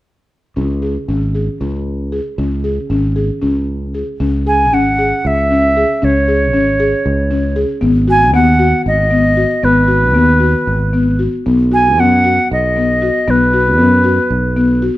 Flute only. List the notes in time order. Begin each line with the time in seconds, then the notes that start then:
4.47 G#5
4.74 F#5
5.27 E5
6.04 C#5
8.10 G#5
8.34 F#5
8.87 D#5
9.64 B4
11.73 G#5
12.00 F#5
12.52 D#5
13.30 B4